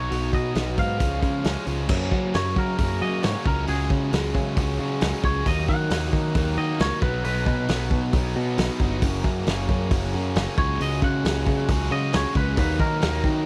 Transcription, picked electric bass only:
0.11 0.32 B1 medium
0.33 0.54 B2 medium
0.56 0.77 B1 medium
0.78 0.99 G#2 medium
1.00 1.21 C#2 medium
1.22 1.44 C#3 medium
1.45 1.56 C#2 medium
1.67 1.88 C#2 medium
1.90 2.11 F#2 medium
2.12 2.33 F#3 medium
2.35 2.55 F#2 medium
2.56 2.77 F#3 medium
2.79 3.00 F#2 medium
3.02 3.22 F#3 medium
3.24 3.34 G#2 medium
3.46 3.67 C#2 medium
3.68 3.89 C#2 medium
3.90 4.11 C#3 medium
4.13 4.34 C#2 medium
4.35 4.56 C#3 medium
4.57 4.78 C#2 loud
4.79 5.00 C#3 medium
5.02 5.12 C#2 medium
5.24 5.45 C#2 medium
5.46 5.67 D#2 medium
5.68 5.89 D#3 medium
5.90 6.11 D#2 medium
6.13 6.34 D#3 medium
6.35 6.56 D#2 loud
6.58 6.79 D#3 medium
6.80 6.91 C#2 medium
7.02 7.23 B1 medium
7.25 7.45 B1 medium
7.47 7.68 B2 medium
7.69 7.90 B1 medium
7.91 8.12 B2 medium
8.14 8.34 B1 medium
8.36 8.57 B2 medium
8.58 8.69 B1 medium
8.80 9.01 G1 medium
9.03 9.23 F#1 medium
9.24 9.45 F#2 medium
9.47 9.68 F#1 medium
9.69 9.90 F#2 medium
9.92 10.12 F#1 medium
10.14 10.35 F#2 medium
10.36 10.46 F#1 medium
10.58 10.79 C#2 medium
10.80 11.01 C#2 medium
11.02 11.23 C#3 medium
11.25 11.45 C#2 medium
11.47 11.67 C#3 medium
11.69 11.90 C#2 loud
11.91 12.12 C#3 medium
12.15 12.24 C#2 medium
12.35 12.56 C#2 medium
12.57 12.78 D#2 medium
12.80 13.01 D#3 medium
13.03 13.23 D#2 medium
13.24 13.45 D#3 medium

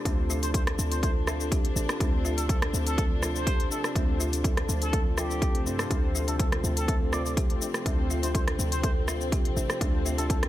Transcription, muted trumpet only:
0.43 0.50 C5 medium
0.54 0.62 C5 medium
0.91 0.99 C5 medium
1.03 1.11 C5 medium
2.38 2.45 A4 medium
2.49 2.57 A4 medium
2.87 3.06 A4 loud
3.35 3.69 C5 medium
3.71 3.79 A4 medium
3.84 3.92 A4 medium
4.82 5.01 A4 medium
5.17 5.66 G4 medium
6.28 6.35 A4 medium
6.39 6.48 A4 medium
6.77 6.96 A4 medium
7.13 7.21 D5 medium
7.25 7.33 D5 medium
8.23 8.30 C5 medium
8.34 8.43 C5 medium
8.71 8.79 C5 medium
8.83 8.91 C5 medium
10.18 10.25 A4 medium
10.30 10.38 A4 medium

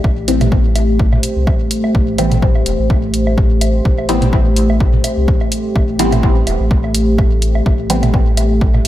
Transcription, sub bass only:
0.04 1.19 A1 loud
1.36 1.54 C2 medium
1.95 2.62 A1 loud
2.66 2.76 E1 loud
2.79 3.81 A1 loud
3.85 5.00 A1 loud
5.17 5.35 C2 medium
5.76 6.43 A1 medium
6.47 6.57 E1 loud
6.60 7.62 A1 loud
7.66 8.81 A1 loud

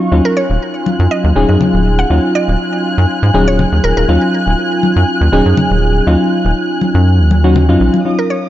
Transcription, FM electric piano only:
0.12 1.33 F#3 medium
0.12 1.33 C#4 medium
0.12 1.33 D#4 medium
0.12 1.33 F4 medium
1.36 2.07 F#3 medium
1.36 2.07 C#4 medium
1.36 2.08 D#4 medium
1.36 2.08 G#4 loud
2.10 3.31 F#3 medium
2.10 3.31 C#4 medium
2.10 3.31 D#4 medium
2.10 3.32 F4 medium
3.34 4.06 F#3 medium
3.34 4.06 C#4 medium
3.34 4.06 D#4 medium
3.34 4.06 G#4 loud
4.08 5.30 F#3 medium
4.08 5.30 C#4 medium
4.08 5.30 D#4 medium
4.08 5.30 F4 loud
5.32 6.04 F#3 medium
5.32 6.04 C#4 medium
5.32 6.04 D#4 medium
5.32 6.04 G#4 loud
6.07 7.28 F#3 medium
6.07 7.28 C#4 medium
6.07 7.28 D#4 medium
6.07 7.28 F4 loud
7.44 7.65 F#3 medium
7.44 7.65 C#4 medium
7.44 7.65 D#4 medium
7.44 7.65 F#4 loud
7.69 8.02 F#3 medium
7.69 8.03 C#4 medium
7.69 8.03 D#4 medium
7.69 8.03 F4 loud
8.05 8.49 F#3 medium
8.05 8.49 C#4 medium
8.05 8.49 D#4 medium
8.05 8.49 F4 medium

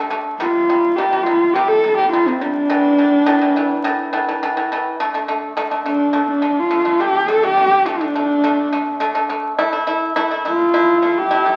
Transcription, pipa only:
0.10 0.34 D3 medium
0.10 0.34 A3 medium
0.40 0.63 C3 medium
0.40 0.63 G3 loud
0.69 0.92 C3 medium
0.69 0.92 G3 medium
0.98 1.09 C3 medium
0.98 1.09 G3 loud
1.12 1.24 C3 medium
1.12 1.23 G3 medium
1.26 1.49 C3 medium
1.26 1.49 G3 medium
1.55 1.78 C3 loud
1.55 1.78 G3 medium
1.84 1.95 C3 medium
1.84 1.95 G3 medium
1.99 2.10 C3 medium
1.99 2.10 G3 medium
2.13 2.24 C3 medium
2.13 2.24 G3 medium
2.28 2.39 C3 medium
2.28 2.39 G3 medium
2.41 2.64 C3 medium
2.41 2.64 G3 medium
2.70 2.93 A2 loud
2.70 2.93 E3 loud
2.98 3.22 A2 medium
2.98 3.21 E3 medium
3.26 3.38 A2 loud
3.26 3.38 E3 loud
3.41 3.53 A2 medium
3.41 3.53 E3 medium
3.56 3.79 A2 medium
3.56 3.79 E3 medium
3.84 4.07 A2 loud
3.84 4.08 E3 loud
4.13 4.25 A2 medium
4.13 4.25 E3 loud
4.29 4.40 A2 medium
4.29 4.39 E3 medium
4.43 4.54 A2 medium
4.43 4.54 E3 loud
4.57 4.68 A2 medium
4.57 4.68 E3 medium
4.72 4.94 A2 medium
4.72 4.95 E3 medium
5.00 5.11 D3 loud
5.00 5.11 A3 loud
5.14 5.26 D3 medium
5.14 5.26 A3 medium
5.28 5.51 D3 medium
5.28 5.51 A3 medium
5.57 5.68 D3 loud
5.57 5.68 A3 loud
5.71 5.83 D3 medium
5.71 5.83 A3 medium
5.86 6.09 D3 medium
5.86 6.09 A3 medium
6.13 6.37 D3 medium
6.13 6.37 A3 medium
6.42 6.65 D3 medium
6.42 6.65 A3 medium
6.71 6.83 D3 medium
6.71 6.83 A3 medium
6.85 6.97 D3 medium
6.85 6.97 A3 medium
7.00 7.23 D3 medium
7.00 7.23 A3 medium
7.28 7.40 D3 medium
7.28 7.40 A3 loud
7.43 7.55 D3 medium
7.43 7.55 A3 medium
7.57 7.81 D3 medium
7.57 7.80 A3 medium
7.86 7.98 D3 medium
7.86 7.98 A3 loud
8.01 8.12 D3 medium
8.01 8.12 A3 medium
8.15 8.38 D3 medium
8.15 8.38 A3 medium
8.44 8.67 D3 loud
8.44 8.67 A3 loud
8.72 8.95 D3 medium
8.72 8.95 A3 medium
9.00 9.12 D3 loud
9.00 9.12 A3 loud
9.15 9.27 D3 medium
9.15 9.27 A3 medium
9.29 9.53 D3 medium
9.29 9.53 A3 medium
9.59 9.70 A3 loud
9.59 9.70 E4 loud
9.72 9.84 A3 medium
9.72 9.84 E4 medium
9.87 10.10 A3 medium
9.87 10.10 E4 loud
10.16 10.28 A3 loud
10.16 10.27 E4 loud
10.31 10.42 A3 medium
10.31 10.42 E4 medium
10.45 10.68 A3 medium
10.45 10.68 E4 medium
10.74 10.96 A3 medium
10.74 10.96 E4 loud
11.02 11.25 A3 medium
11.02 11.25 E4 medium
11.31 11.42 A3 medium
11.31 11.42 E4 medium
11.46 11.56 A3 medium
11.46 11.56 E4 medium

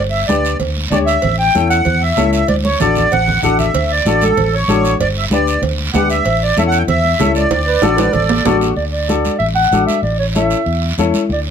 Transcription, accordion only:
0.10 0.26 E5 medium
0.27 0.57 D5 medium
0.91 0.99 D5 medium
1.06 1.36 E5 loud
1.39 1.68 G5 loud
1.70 2.03 F#5 loud
2.02 2.31 E5 loud
2.33 2.48 E5 medium
2.48 2.56 D5 medium
2.64 2.79 C#5 medium
2.80 3.12 D5 medium
3.12 3.41 F#5 loud
3.42 3.57 F#5 medium
3.60 3.92 E5 medium
3.92 4.23 D5 medium
4.23 4.55 A4 medium
4.54 4.97 C#5 medium
5.01 5.08 D5 medium
5.18 5.25 E5 medium
5.33 5.62 D5 medium
5.94 6.09 F#5 medium
6.10 6.43 E5 loud
6.43 6.57 D5 medium
6.58 6.63 E5 medium
6.67 6.78 F#5 loud
6.78 6.83 G5 loud
6.89 7.32 E5 loud
7.36 8.58 D5 medium

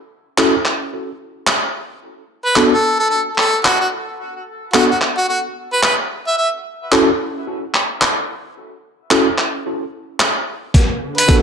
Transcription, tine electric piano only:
0.38 0.54 C#4 medium
0.38 0.54 E4 medium
0.38 0.54 F#4 medium
0.38 0.54 A4 medium
2.56 2.73 B3 medium
2.56 2.73 D4 medium
2.56 2.73 F#4 medium
2.56 2.73 A4 medium
4.74 4.91 B3 medium
4.74 4.91 D4 medium
4.74 4.91 F#4 medium
4.74 4.91 A4 medium
6.92 7.09 C#4 medium
6.92 7.09 E4 medium
6.92 7.09 F#4 medium
6.92 7.09 A4 loud
9.11 9.27 C#4 medium
9.11 9.27 E4 medium
9.11 9.27 F#4 medium
9.11 9.27 A4 medium
11.28 11.42 B3 medium
11.28 11.42 D4 medium
11.28 11.42 F#4 medium
11.28 11.42 A4 loud

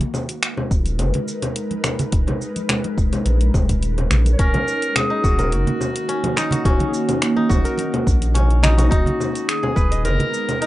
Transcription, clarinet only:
4.33 4.40 C#5 medium
4.39 4.97 A#4 loud
4.96 5.55 G#4 loud
5.53 6.40 F#4 loud
6.38 6.65 D#4 medium
6.65 6.86 F#4 medium
6.87 6.95 G#4 medium
6.94 7.50 F#4 medium
8.63 8.72 D#4 medium
8.70 8.79 F#4 medium
8.77 8.92 D#4 medium
8.90 9.50 F#4 loud
9.48 10.04 G#4 loud
10.04 10.57 A#4 loud
10.61 10.66 A#4 loud

